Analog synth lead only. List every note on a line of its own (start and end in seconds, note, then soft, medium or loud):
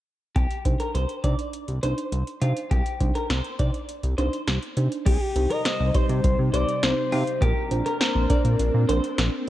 5.06 5.15 G4 loud
5.13 5.22 G#4 medium
5.20 5.52 G4 loud
5.51 5.96 D#5 loud
5.95 6.23 C5 loud
6.24 6.37 C5 loud
6.54 6.84 D5 loud
6.83 7.43 C5 loud
7.42 9.48 A#4 loud